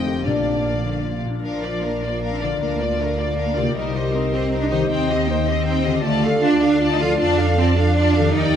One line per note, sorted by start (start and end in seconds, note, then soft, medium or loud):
0.00 0.26 F1 medium
0.00 0.26 F2 soft
0.00 3.59 F3 soft
0.00 0.22 A3 soft
0.00 0.25 C4 medium
0.00 0.28 D#4 soft
0.00 1.04 F4 soft
0.00 0.22 D#5 soft
0.00 0.22 G5 soft
0.07 0.28 G4 soft
0.07 0.28 A4 soft
0.26 1.24 A#1 soft
0.26 0.81 A#2 soft
0.26 1.24 A#2 soft
0.26 0.82 A#2 medium
0.26 1.20 A#3 soft
0.26 0.85 D4 medium
0.26 1.20 D5 soft
0.26 1.20 F5 soft
0.46 1.23 D4 soft
0.66 1.38 A#4 soft
0.84 1.12 D3 soft
0.84 3.78 D5 soft
1.05 1.33 F4 soft
1.16 1.25 C3 soft
1.24 1.44 A#2 soft
1.24 2.53 A#2 soft
1.24 1.29 D4 soft
1.30 2.46 D4 soft
1.34 2.50 F4 soft
1.39 2.56 A#1 soft
1.39 1.61 D4 soft
1.39 2.55 A#4 soft
1.43 1.80 F3 medium
1.43 3.72 A#4 soft
1.43 1.62 A#4 soft
1.43 3.71 D5 soft
1.43 1.62 F5 soft
1.63 1.83 F4 soft
1.63 1.83 D5 soft
1.82 2.01 A#3 medium
1.82 2.02 D4 soft
1.82 2.02 A#4 soft
1.82 2.02 F5 soft
2.02 2.31 A#3 medium
2.02 2.22 F4 soft
2.02 2.22 D5 soft
2.22 2.40 D4 soft
2.22 2.40 A#4 soft
2.22 2.40 F5 soft
2.33 2.37 C4 medium
2.42 3.68 D3 soft
2.42 2.49 D4 medium
2.42 2.61 F4 soft
2.42 2.61 D5 soft
2.47 3.71 D4 soft
2.51 3.73 F4 soft
2.56 3.70 A#4 soft
2.56 2.78 F5 soft
2.60 3.76 D2 soft
2.60 2.98 A#3 medium
2.60 2.79 D4 soft
2.60 2.79 A#4 soft
2.79 3.00 F4 soft
2.79 2.99 D5 soft
2.79 3.00 D5 soft
2.98 3.18 A3 medium
2.98 3.19 D4 soft
2.98 3.19 A#4 soft
2.98 3.18 F5 soft
3.18 3.75 A#3 medium
3.18 3.38 F4 soft
3.18 3.38 D5 soft
3.37 3.55 D4 soft
3.37 3.55 A#4 soft
3.37 3.55 F5 soft
3.56 4.82 C3 soft
3.56 3.75 F4 soft
3.56 3.75 D5 soft
3.56 3.76 D5 soft
3.62 4.75 D#4 soft
3.66 4.79 G4 soft
3.71 4.87 C2 soft
3.71 4.89 A#4 soft
3.75 4.13 G3 medium
3.75 3.93 D#4 soft
3.75 4.87 A#4 soft
3.75 3.94 A#4 soft
3.75 3.94 C5 soft
3.75 6.00 D#5 soft
3.94 4.13 G4 soft
3.94 4.14 C5 soft
3.94 4.14 D#5 soft
4.13 4.31 C4 medium
4.13 4.32 D#4 soft
4.13 4.33 A#4 soft
4.13 4.33 C5 soft
4.32 4.60 C4 medium
4.32 4.51 G4 soft
4.32 4.52 C5 soft
4.32 4.51 D#5 soft
4.51 4.69 D#4 soft
4.51 4.71 A#4 soft
4.51 4.69 C5 soft
4.61 4.65 D4 medium
4.70 5.97 D#3 soft
4.70 4.89 D#4 medium
4.70 4.90 G4 soft
4.70 4.90 C5 soft
4.70 4.90 D#5 soft
4.76 6.00 D#4 soft
4.80 6.02 G4 soft
4.85 6.04 D#2 medium
4.85 6.04 C5 soft
4.89 5.27 C4 medium
4.89 5.08 D#4 soft
4.89 6.05 G4 medium
4.89 5.08 C5 soft
4.89 5.08 G5 medium
5.09 5.28 G4 soft
5.09 5.28 D#5 soft
5.09 5.29 D#5 soft
5.27 5.47 A#3 medium
5.27 5.47 D#4 soft
5.27 5.48 C5 soft
5.27 5.47 G5 soft
5.47 6.04 C4 medium
5.47 5.66 G4 soft
5.47 5.66 D#5 medium
5.66 5.84 D#4 soft
5.66 5.84 C5 soft
5.66 5.84 G5 soft
5.85 7.12 D3 medium
5.85 6.05 G4 soft
5.85 6.04 D#5 soft
5.85 6.05 D#5 soft
5.91 7.05 F4 soft
5.96 7.10 A4 soft
6.00 7.17 D2 medium
6.00 8.35 F4 medium
6.00 7.14 D5 soft
6.00 8.31 D5 medium
6.00 6.21 A5 medium
6.05 6.42 A3 medium
6.05 6.23 F4 medium
6.05 6.23 D5 medium
6.23 6.43 A4 soft
6.23 6.43 F5 soft
6.23 6.44 F5 soft
6.42 6.61 D4 medium
6.42 6.62 F4 soft
6.42 6.63 D5 medium
6.42 6.62 A5 soft
6.62 6.90 D4 medium
6.62 6.81 A4 soft
6.62 6.81 F5 medium
6.62 6.82 F5 medium
6.80 6.98 F4 medium
6.80 7.00 D5 soft
6.80 6.98 A5 soft
6.92 7.01 D#4 medium
7.00 8.28 F3 medium
7.00 7.19 F4 medium
7.00 7.19 A4 medium
7.00 7.20 F5 medium
7.00 7.21 F5 medium
7.06 8.30 F4 soft
7.11 8.33 A4 soft
7.15 8.35 F2 medium
7.15 7.57 D4 medium
7.15 7.37 F4 medium
7.15 8.30 D5 soft
7.15 7.37 A5 medium
7.21 7.39 D5 medium
7.38 7.58 A4 soft
7.38 7.58 F5 soft
7.58 7.77 C4 medium
7.58 7.78 F4 medium
7.58 7.79 D5 medium
7.58 7.77 A5 soft
7.77 8.34 D4 medium
7.77 7.97 A4 medium
7.77 7.97 F5 medium
7.77 7.97 F5 soft
7.96 8.14 F4 medium
7.96 8.15 D5 soft
7.96 8.15 A5 soft
8.15 8.56 D#3 soft
8.15 8.35 A4 medium
8.15 8.35 F5 soft
8.22 8.56 G4 soft
8.27 8.56 A#4 soft
8.31 8.56 D#2 medium
8.31 8.56 D5 soft
8.31 8.56 G5 medium
8.36 8.56 D#4 medium
8.36 8.56 G4 medium
8.36 8.56 A#4 medium
8.36 8.56 D5 medium